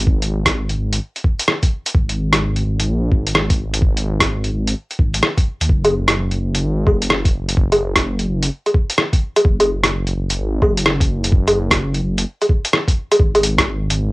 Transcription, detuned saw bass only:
Already playing: G#1
0.77 G#1
1.95 G#1
2.65 G#1
2.88 A#1
3.12 G#1
4.52 G#1
4.99 G#1
5.61 D#2
5.69 F#1
6.40 F#1
6.63 G#1
6.87 F#1
8.27 F#1
9.45 F#1
10.15 F#1
10.39 G#1
10.62 F#1
12.03 F#1
13.20 G#1
13.90 G#1

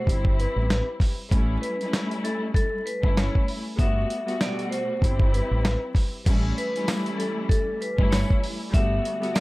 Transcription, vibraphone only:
Already playing: C5
0.39 B4
1.61 B4
2.24 A4
2.55 A4
2.86 B4
3.17 C#5
3.79 E5
4.41 D5
4.70 C5
5.33 B4
6.58 B4
7.18 A4
7.49 A4
7.81 B4
8.11 C#5
8.73 E5
9.34 D5

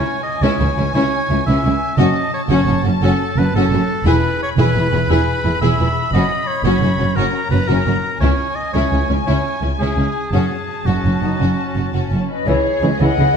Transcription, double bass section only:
0.42 C#2
0.59 C#2
0.76 C#2
0.94 C#2
1.30 C#2
1.47 C#2
1.64 C#2
1.98 F#1
2.51 F#1
2.67 F#1
2.84 F#1
3.01 F#1
3.37 F#1
3.54 F#1
3.72 F#1
4.06 E1
4.58 E1
4.75 E1
4.93 E1
5.10 E1
5.45 E1
5.61 E1
5.79 E1
6.13 F#1
6.64 F#1
6.82 F#1
6.99 F#1
7.16 F#1
7.51 F#1
7.69 F#1
7.87 F#1
8.21 C#2
8.74 C#2
8.92 C#2
9.10 C#2
9.27 C#2
9.62 C#2
9.80 C#2
9.98 C#2
10.33 F#1
10.87 F#1
11.04 F#1
11.22 F#1
11.41 F#1
11.76 F#1
11.93 F#1
12.11 F#1
12.46 C#2
12.81 C#2
12.99 C#2
13.17 C#2

